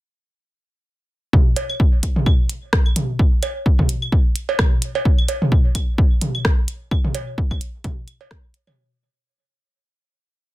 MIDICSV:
0, 0, Header, 1, 2, 480
1, 0, Start_track
1, 0, Tempo, 465116
1, 1376, Time_signature, 4, 2, 24, 8
1, 10886, End_track
2, 0, Start_track
2, 0, Title_t, "Drums"
2, 1375, Note_on_c, 9, 36, 122
2, 1376, Note_on_c, 9, 48, 43
2, 1478, Note_off_c, 9, 36, 0
2, 1479, Note_off_c, 9, 48, 0
2, 1615, Note_on_c, 9, 42, 87
2, 1615, Note_on_c, 9, 56, 79
2, 1718, Note_off_c, 9, 42, 0
2, 1718, Note_off_c, 9, 56, 0
2, 1750, Note_on_c, 9, 75, 65
2, 1853, Note_off_c, 9, 75, 0
2, 1856, Note_on_c, 9, 36, 112
2, 1959, Note_off_c, 9, 36, 0
2, 2095, Note_on_c, 9, 36, 57
2, 2095, Note_on_c, 9, 42, 95
2, 2198, Note_off_c, 9, 42, 0
2, 2199, Note_off_c, 9, 36, 0
2, 2230, Note_on_c, 9, 48, 43
2, 2334, Note_off_c, 9, 48, 0
2, 2335, Note_on_c, 9, 75, 60
2, 2336, Note_on_c, 9, 36, 118
2, 2438, Note_off_c, 9, 75, 0
2, 2439, Note_off_c, 9, 36, 0
2, 2575, Note_on_c, 9, 42, 87
2, 2678, Note_off_c, 9, 42, 0
2, 2816, Note_on_c, 9, 36, 116
2, 2816, Note_on_c, 9, 37, 99
2, 2919, Note_off_c, 9, 36, 0
2, 2919, Note_off_c, 9, 37, 0
2, 2950, Note_on_c, 9, 75, 64
2, 3053, Note_off_c, 9, 75, 0
2, 3056, Note_on_c, 9, 42, 91
2, 3056, Note_on_c, 9, 48, 46
2, 3159, Note_off_c, 9, 42, 0
2, 3159, Note_off_c, 9, 48, 0
2, 3295, Note_on_c, 9, 36, 120
2, 3399, Note_off_c, 9, 36, 0
2, 3536, Note_on_c, 9, 42, 90
2, 3536, Note_on_c, 9, 56, 81
2, 3536, Note_on_c, 9, 75, 60
2, 3639, Note_off_c, 9, 42, 0
2, 3640, Note_off_c, 9, 56, 0
2, 3640, Note_off_c, 9, 75, 0
2, 3775, Note_on_c, 9, 36, 118
2, 3879, Note_off_c, 9, 36, 0
2, 3911, Note_on_c, 9, 36, 65
2, 3912, Note_on_c, 9, 48, 45
2, 4014, Note_off_c, 9, 36, 0
2, 4015, Note_off_c, 9, 48, 0
2, 4016, Note_on_c, 9, 42, 96
2, 4119, Note_off_c, 9, 42, 0
2, 4151, Note_on_c, 9, 75, 62
2, 4254, Note_off_c, 9, 75, 0
2, 4255, Note_on_c, 9, 36, 122
2, 4358, Note_off_c, 9, 36, 0
2, 4495, Note_on_c, 9, 42, 95
2, 4598, Note_off_c, 9, 42, 0
2, 4632, Note_on_c, 9, 56, 93
2, 4735, Note_off_c, 9, 56, 0
2, 4735, Note_on_c, 9, 36, 122
2, 4735, Note_on_c, 9, 37, 104
2, 4736, Note_on_c, 9, 48, 44
2, 4736, Note_on_c, 9, 75, 64
2, 4838, Note_off_c, 9, 36, 0
2, 4838, Note_off_c, 9, 37, 0
2, 4839, Note_off_c, 9, 48, 0
2, 4839, Note_off_c, 9, 75, 0
2, 4974, Note_on_c, 9, 42, 93
2, 5078, Note_off_c, 9, 42, 0
2, 5111, Note_on_c, 9, 56, 83
2, 5214, Note_off_c, 9, 56, 0
2, 5215, Note_on_c, 9, 36, 124
2, 5318, Note_off_c, 9, 36, 0
2, 5351, Note_on_c, 9, 75, 62
2, 5454, Note_off_c, 9, 75, 0
2, 5454, Note_on_c, 9, 42, 94
2, 5455, Note_on_c, 9, 56, 76
2, 5557, Note_off_c, 9, 42, 0
2, 5558, Note_off_c, 9, 56, 0
2, 5591, Note_on_c, 9, 48, 47
2, 5694, Note_off_c, 9, 48, 0
2, 5695, Note_on_c, 9, 36, 127
2, 5798, Note_off_c, 9, 36, 0
2, 5934, Note_on_c, 9, 42, 102
2, 5935, Note_on_c, 9, 36, 59
2, 5936, Note_on_c, 9, 75, 61
2, 6037, Note_off_c, 9, 42, 0
2, 6038, Note_off_c, 9, 36, 0
2, 6039, Note_off_c, 9, 75, 0
2, 6174, Note_on_c, 9, 36, 125
2, 6278, Note_off_c, 9, 36, 0
2, 6414, Note_on_c, 9, 42, 97
2, 6416, Note_on_c, 9, 48, 48
2, 6517, Note_off_c, 9, 42, 0
2, 6519, Note_off_c, 9, 48, 0
2, 6551, Note_on_c, 9, 75, 61
2, 6654, Note_off_c, 9, 75, 0
2, 6654, Note_on_c, 9, 37, 100
2, 6655, Note_on_c, 9, 36, 125
2, 6758, Note_off_c, 9, 36, 0
2, 6758, Note_off_c, 9, 37, 0
2, 6894, Note_on_c, 9, 42, 98
2, 6997, Note_off_c, 9, 42, 0
2, 7135, Note_on_c, 9, 36, 121
2, 7135, Note_on_c, 9, 75, 66
2, 7238, Note_off_c, 9, 36, 0
2, 7238, Note_off_c, 9, 75, 0
2, 7270, Note_on_c, 9, 48, 48
2, 7373, Note_off_c, 9, 48, 0
2, 7374, Note_on_c, 9, 42, 92
2, 7375, Note_on_c, 9, 56, 77
2, 7477, Note_off_c, 9, 42, 0
2, 7478, Note_off_c, 9, 56, 0
2, 7615, Note_on_c, 9, 36, 123
2, 7718, Note_off_c, 9, 36, 0
2, 7750, Note_on_c, 9, 36, 65
2, 7750, Note_on_c, 9, 75, 65
2, 7853, Note_off_c, 9, 36, 0
2, 7853, Note_off_c, 9, 75, 0
2, 7854, Note_on_c, 9, 42, 99
2, 7957, Note_off_c, 9, 42, 0
2, 8094, Note_on_c, 9, 42, 38
2, 8095, Note_on_c, 9, 36, 126
2, 8096, Note_on_c, 9, 48, 45
2, 8198, Note_off_c, 9, 36, 0
2, 8198, Note_off_c, 9, 42, 0
2, 8199, Note_off_c, 9, 48, 0
2, 8335, Note_on_c, 9, 42, 95
2, 8335, Note_on_c, 9, 75, 63
2, 8438, Note_off_c, 9, 42, 0
2, 8439, Note_off_c, 9, 75, 0
2, 8470, Note_on_c, 9, 56, 89
2, 8573, Note_off_c, 9, 56, 0
2, 8574, Note_on_c, 9, 37, 100
2, 8575, Note_on_c, 9, 36, 120
2, 8677, Note_off_c, 9, 37, 0
2, 8678, Note_off_c, 9, 36, 0
2, 8814, Note_on_c, 9, 42, 95
2, 8918, Note_off_c, 9, 42, 0
2, 8950, Note_on_c, 9, 48, 49
2, 8950, Note_on_c, 9, 56, 82
2, 8950, Note_on_c, 9, 75, 64
2, 9053, Note_off_c, 9, 48, 0
2, 9053, Note_off_c, 9, 56, 0
2, 9053, Note_off_c, 9, 75, 0
2, 10886, End_track
0, 0, End_of_file